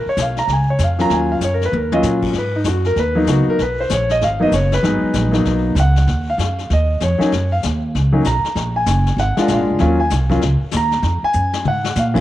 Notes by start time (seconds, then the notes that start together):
0.06 C#5, muted upright bass stroke
0.17 B1, snare, hi-hat pedal
0.22 F5
0.36 A#5, snare
0.47 C#2, brush sweep, snare
0.53 G#5
0.70 C#5
0.78 F2, snare, hi-hat pedal
0.84 F5
0.99 F#3 A#3 C#4 F4 A#5, snare
1.10 D#2 G#5, brush sweep, snare
1.32 F5
1.41 F#2 C#5, snare, hi-hat pedal
1.54 A#4
1.61 snare
1.65 B4
1.72 D#2, high tom
1.76 A#4
1.92 F#3 A#3 C#4 F4 D#5, high tom
2.03 A#2, snare, hi-hat pedal
2.22 kick, crash
2.33 G#2, brush sweep, snare
2.38 B4
2.56 D#4
2.64 F#2 F#4, snare, hi-hat pedal
2.84 A#4, snare
2.96 D#2 B4, brush sweep, snare
3.15 F#3 A#3 B3 D#4
3.26 C#2 F#4, snare, hi-hat pedal
3.47 A#4, muted upright bass stroke
3.59 B1 B4, brush sweep, snare
3.80 C5
3.89 A#1 C#5, snare, hi-hat pedal
4.09 D#5, snare
4.21 G#1 F5, brush sweep, snare
4.40 F#3 A#3 B3 D#4 D#5
4.52 F#1 C#5, snare, hi-hat pedal
4.72 B4, snare
4.83 G#1 F#3 G#3 B3 D#4, brush sweep, snare
5.02 muted upright bass stroke
5.13 A#1, snare, hi-hat pedal
5.31 F#3 A#3 B3 D#4, snare
5.45 B1, brush sweep, snare
5.75 C#2, snare, hi-hat pedal
5.80 F#5
5.96 snare
6.07 D#2, brush sweep, snare
6.30 F5
6.38 F#2, snare, hi-hat pedal
6.59 snare
6.70 D#2 D#5, brush sweep, snare
7.00 F2 C#5, snare, hi-hat pedal
7.18 F#3 A#3 C#4 D#4, muted upright bass stroke, snare
7.32 F#2, brush sweep, snare
7.52 F5
7.63 D#2, snare, hi-hat pedal
7.95 C#2, brush sweep, snare
8.12 F#3 A#3 C#4 D#4
8.24 B1 A#5, snare, hi-hat pedal
8.44 muted upright bass stroke, snare
8.55 A#1, brush sweep, snare
8.76 G#5
8.86 F#1, snare, hi-hat pedal
9.06 snare
9.17 G#1 F#5, brush sweep, snare
9.37 G#3 A#3 D4 F4, muted upright bass stroke, snare
9.48 A#1, snare, hi-hat pedal
9.52 F5
9.59 G#1
9.70 F1
9.79 D#2 F#3 A#3 C#4 F4, brush sweep, snare
10.00 G#5
10.10 C2, snare, hi-hat pedal
10.30 F#3 A#3 C#4 F4, kick, snare
10.41 C#2, brush sweep, snare
10.62 muted upright bass stroke
10.71 D#2, snare, hi-hat pedal
10.77 A#5
10.91 snare
11.02 F2, brush sweep, snare
11.23 G#5, muted upright bass stroke
11.33 F#2, hi-hat pedal
11.53 snare
11.65 G#2 F#5, mid tom
11.84 snare
11.95 A#2 F5, snare, hi-hat pedal
12.14 D#2 F#3 A#3 C#4 F4, kick, crash